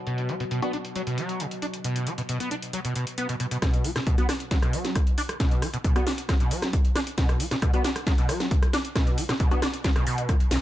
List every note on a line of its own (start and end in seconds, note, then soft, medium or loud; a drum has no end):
0.00 3.67 B2 medium
0.00 3.67 F#3 medium
0.07 0.30 B2 medium
0.07 closed hi-hat medium
0.18 closed hi-hat soft
0.29 0.35 F#3 medium
0.29 closed hi-hat medium
0.40 0.44 B2 medium
0.40 closed hi-hat medium
0.51 0.60 B2 medium
0.51 closed hi-hat medium
0.62 0.71 B3 medium
0.62 0.71 D4 medium
0.62 0.71 F#4 medium
0.62 closed hi-hat soft
0.73 0.77 D4 medium
0.73 closed hi-hat medium
0.85 closed hi-hat soft
0.96 1.02 F#3 loud
0.96 closed hi-hat medium
1.07 1.19 B2 medium
1.07 closed hi-hat soft
1.18 1.42 F#3 medium
1.18 closed hi-hat medium
1.29 closed hi-hat medium
1.40 1.46 C3 medium
1.40 closed hi-hat medium
1.51 closed hi-hat soft
1.62 1.66 D4 medium
1.62 closed hi-hat medium
1.74 closed hi-hat soft
1.84 2.08 B2 medium
1.84 closed hi-hat medium
1.96 closed hi-hat medium
2.07 2.13 F#3 medium
2.07 closed hi-hat medium
2.18 2.22 B2 medium
2.18 closed hi-hat medium
2.29 2.38 B2 medium
2.29 closed hi-hat medium
2.40 2.49 B3 medium
2.40 closed hi-hat medium
2.51 2.55 D4 medium
2.51 closed hi-hat medium
2.62 closed hi-hat medium
2.73 2.80 F#3 loud
2.73 closed hi-hat medium
2.85 2.94 B2 medium
2.85 closed hi-hat medium
2.96 3.05 B2 medium
2.96 closed hi-hat medium
3.07 closed hi-hat medium
3.18 3.27 B3 medium
3.18 closed hi-hat medium
3.29 3.35 B2 medium
3.29 closed hi-hat soft
3.40 3.46 B2 medium
3.40 closed hi-hat medium
3.51 3.57 B2 medium
3.51 closed hi-hat medium
3.62 3.86 B2 medium
3.62 kick loud
3.62 cross-stick medium
3.62 snare soft
3.62 closed hi-hat medium
3.74 closed hi-hat medium
3.84 3.91 F#3 medium
3.84 open hi-hat loud
3.96 3.99 B2 medium
3.96 cross-stick medium
3.96 snare soft
3.96 closed hi-hat medium
4.07 4.16 B2 medium
4.07 kick loud
4.07 closed hi-hat medium
4.18 4.27 B3 medium
4.18 4.27 D4 medium
4.18 4.27 F#4 medium
4.18 closed hi-hat medium
4.29 4.33 D4 medium
4.29 cross-stick medium
4.29 snare medium
4.29 open hi-hat loud
4.40 closed hi-hat medium
4.51 4.57 F#3 loud
4.51 kick loud
4.51 snare medium
4.51 closed hi-hat loud
4.62 4.75 B2 medium
4.62 cross-stick medium
4.62 closed hi-hat medium
4.73 4.97 F#3 medium
4.73 open hi-hat loud
4.85 snare soft
4.85 closed hi-hat medium
4.96 5.02 C3 medium
4.96 kick loud
4.96 cross-stick medium
4.96 closed hi-hat loud
5.07 closed hi-hat medium
5.18 5.22 D4 medium
5.18 open hi-hat loud
5.29 cross-stick medium
5.29 closed hi-hat medium
5.40 5.64 B2 medium
5.40 kick loud
5.40 snare medium
5.40 closed hi-hat medium
5.51 closed hi-hat medium
5.62 5.68 F#3 medium
5.62 cross-stick medium
5.62 open hi-hat loud
5.74 5.77 B2 medium
5.74 closed hi-hat medium
5.84 5.94 B2 medium
5.84 kick loud
5.84 closed hi-hat medium
5.96 6.05 B3 medium
5.96 6.05 D4 medium
5.96 6.05 F#4 loud
5.96 cross-stick medium
5.96 closed hi-hat medium
6.07 6.10 D4 medium
6.07 snare medium
6.07 open hi-hat loud
6.18 closed hi-hat medium
6.29 6.35 F#3 loud
6.29 kick loud
6.29 cross-stick medium
6.29 snare medium
6.29 closed hi-hat loud
6.40 6.53 B2 medium
6.40 closed hi-hat medium
6.51 6.75 F#3 medium
6.51 open hi-hat loud
6.62 cross-stick medium
6.62 snare medium
6.62 closed hi-hat medium
6.73 6.80 C3 medium
6.73 kick loud
6.73 closed hi-hat loud
6.85 closed hi-hat medium
6.96 6.99 D4 medium
6.96 cross-stick medium
6.96 snare medium
6.96 open hi-hat loud
7.07 closed hi-hat medium
7.18 7.42 B2 medium
7.18 kick loud
7.18 snare medium
7.18 closed hi-hat loud
7.29 cross-stick medium
7.29 closed hi-hat medium
7.40 7.46 F#3 medium
7.40 open hi-hat loud
7.51 7.55 B2 medium
7.51 snare medium
7.51 closed hi-hat medium
7.62 7.72 B2 medium
7.62 kick loud
7.62 cross-stick medium
7.62 closed hi-hat medium
7.74 7.82 B3 medium
7.74 7.83 B3 medium
7.74 7.82 D4 medium
7.74 7.82 F#4 medium
7.74 closed hi-hat medium
7.84 7.88 D4 medium
7.84 snare medium
7.84 open hi-hat loud
7.96 cross-stick medium
7.96 closed hi-hat medium
8.07 8.13 F#3 loud
8.07 kick loud
8.07 snare medium
8.07 closed hi-hat loud
8.18 8.31 B2 medium
8.18 closed hi-hat medium
8.29 8.53 F#3 medium
8.29 cross-stick medium
8.29 open hi-hat loud
8.40 snare medium
8.40 closed hi-hat medium
8.51 8.57 C3 medium
8.51 kick loud
8.51 closed hi-hat loud
8.63 cross-stick medium
8.63 closed hi-hat medium
8.73 8.77 D4 medium
8.73 snare medium
8.73 open hi-hat loud
8.85 closed hi-hat medium
8.96 9.19 B2 medium
8.96 kick loud
8.96 cross-stick medium
8.96 snare medium
8.96 closed hi-hat medium
9.07 closed hi-hat medium
9.18 9.24 F#3 medium
9.18 open hi-hat loud
9.29 9.33 B2 medium
9.29 cross-stick medium
9.29 snare medium
9.29 closed hi-hat medium
9.40 9.49 B2 medium
9.40 kick loud
9.40 closed hi-hat medium
9.51 9.60 B3 medium
9.51 9.60 D4 medium
9.51 9.60 F#4 loud
9.51 closed hi-hat medium
9.62 9.66 D4 medium
9.62 cross-stick medium
9.62 snare medium
9.62 open hi-hat loud
9.74 closed hi-hat medium
9.84 9.91 F#3 loud
9.84 kick loud
9.84 snare medium
9.84 closed hi-hat medium
9.96 10.05 B2 medium
9.96 cross-stick medium
9.96 closed hi-hat medium
10.07 10.30 B2 medium
10.07 open hi-hat loud
10.18 closed hi-hat medium
10.29 10.35 A2 medium
10.29 kick loud
10.29 cross-stick medium
10.29 closed hi-hat medium
10.40 closed hi-hat medium
10.51 10.57 B1 loud
10.51 snare medium
10.51 open hi-hat loud